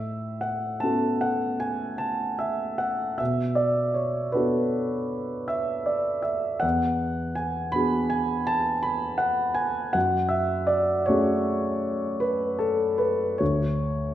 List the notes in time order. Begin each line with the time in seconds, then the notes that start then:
Already playing: A2 E5
0.41 F#5
0.80 B3 C#4 F#4 A4 A5
1.21 F#5
1.60 G#5
1.98 A5
2.39 E5
2.78 F#5
3.18 B2 E5
3.55 D5
3.94 C#5
4.32 B3 D4 F#4 A4 B4
5.48 E5
5.86 D5
6.22 E5
6.60 E2 F#5
7.35 G#5
7.72 B3 D4 F#4 G#4 B5
8.10 G#5
8.47 A5
8.83 B5
9.18 F#5
9.55 G#5
9.93 F#2 F#5
10.29 E5
10.67 D5
11.06 A3 C#4 F#4 G#4 C#5
12.20 B4
12.59 A4
12.98 B4
13.38 D2 C#5